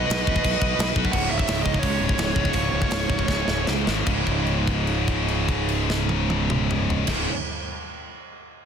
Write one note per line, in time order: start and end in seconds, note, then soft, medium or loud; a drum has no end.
0.00 0.92 B4 medium
0.00 0.90 D#5 loud
0.06 0.21 B1 medium
0.06 0.14 F#4 medium
0.06 0.14 B4 loud
0.10 0.21 F#4 medium
0.10 snare loud
0.10 crash medium
0.14 0.21 B4 medium
0.21 0.29 F#4 medium
0.21 0.29 B4 loud
0.27 0.39 E1 medium
0.27 0.35 F#4 medium
0.27 0.36 B4 medium
0.27 kick medium
0.36 0.43 F#4 medium
0.36 0.44 B4 loud
0.36 kick medium
0.44 0.56 B1 loud
0.44 0.51 F#4 medium
0.44 0.52 B4 medium
0.44 kick loud
0.44 crash medium
0.52 0.59 F#4 medium
0.52 0.60 B4 loud
0.59 0.73 B1 medium
0.59 0.66 F#4 medium
0.59 0.68 B4 medium
0.59 kick loud
0.67 0.74 F#4 medium
0.67 0.75 B4 medium
0.75 0.90 B1 loud
0.75 0.82 F#4 medium
0.75 0.83 B4 medium
0.79 0.89 F#4 medium
0.79 0.90 B4 loud
0.79 snare loud
0.79 crash medium
0.89 0.97 F#4 medium
0.89 0.98 B4 medium
0.96 1.08 B1 medium
0.96 1.05 F#4 medium
0.96 1.05 B4 loud
0.96 kick medium
1.05 1.13 F#4 medium
1.05 1.13 B4 medium
1.05 kick medium
1.12 1.28 C#1 medium
1.12 2.37 C#2 medium
1.12 2.35 G#2 loud
1.12 2.34 C#3 medium
1.12 1.30 F#5 loud
1.12 kick loud
1.12 crash loud
1.29 1.46 C#1 medium
1.29 1.37 E5 medium
1.38 1.62 E5 medium
1.38 kick medium
1.48 1.78 C#1 medium
1.48 snare loud
1.48 open hi-hat medium
1.62 1.79 D#5 medium
1.62 kick medium
1.74 kick medium
1.79 2.54 C#2 medium
1.79 1.98 C#2 medium
1.79 3.65 C#5 medium
1.79 kick loud
1.79 open hi-hat medium
1.84 2.53 G#2 medium
1.84 2.57 C#3 medium
2.01 2.15 C#1 medium
2.09 kick medium
2.18 2.33 C#1 medium
2.18 snare loud
2.18 open hi-hat soft
2.34 2.51 C#1 medium
2.34 2.52 C#2 medium
2.34 2.53 G#2 medium
2.34 2.56 C#3 medium
2.34 kick medium
2.45 kick medium
2.53 2.70 C#1 medium
2.53 3.85 C#2 medium
2.53 3.85 G#2 medium
2.53 3.83 C#3 medium
2.53 kick loud
2.53 open hi-hat medium
2.73 2.88 C#1 medium
2.82 kick medium
2.91 3.07 C#1 medium
2.91 snare loud
2.91 open hi-hat medium
3.10 3.26 C#1 medium
3.10 kick medium
3.19 kick medium
3.28 3.44 C#1 medium
3.28 4.05 C#2 medium
3.28 4.06 G#2 medium
3.28 4.07 C#3 medium
3.28 kick loud
3.28 snare medium
3.48 3.64 C#1 medium
3.48 snare medium
3.67 3.84 C#2 medium
3.67 snare medium
3.85 4.04 G#1 medium
3.85 4.03 C#2 medium
3.85 4.05 G#2 medium
3.85 4.05 C#3 medium
3.85 snare medium
4.04 6.99 C#1 medium
4.04 7.06 C#2 medium
4.04 7.08 G#2 medium
4.04 7.10 C#3 loud
4.04 kick loud
4.04 crash medium
4.27 kick medium
4.27 crash soft
4.47 crash soft
4.67 kick medium
4.67 crash soft
4.87 crash soft
5.08 kick medium
5.08 crash soft
5.28 crash soft
5.49 kick medium
5.49 crash soft
5.68 crash medium
5.90 snare medium
6.09 high tom medium
6.30 high tom medium
6.50 mid tom loud
6.71 mid tom medium
6.90 floor tom medium
7.07 7.25 C#1 medium
7.07 7.26 C#2 medium
7.07 7.27 G#2 loud
7.07 7.27 C#3 medium
7.07 kick loud
7.07 snare medium
7.07 crash loud